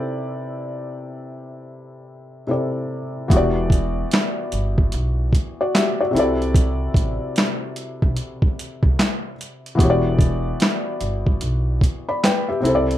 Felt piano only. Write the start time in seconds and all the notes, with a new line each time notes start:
Already playing: C3 C4 E4 A4 B4 D5 G5
2.47 C3 C4 E4 A4 D5
3.28 E3 B3
3.32 F#4 G4
3.37 D5
5.61 F#4 D5
5.75 G4 E5
6.01 F#4 D5
6.11 C3 C4
6.15 E4 A4
6.19 D5
9.75 E3 B3
9.79 F#4 G4
9.83 C#5
9.90 D5
12.09 D5 B5
12.24 B4 G5
12.48 G4 E5
12.61 C3 C4 E4
12.67 A4 C5
12.75 D5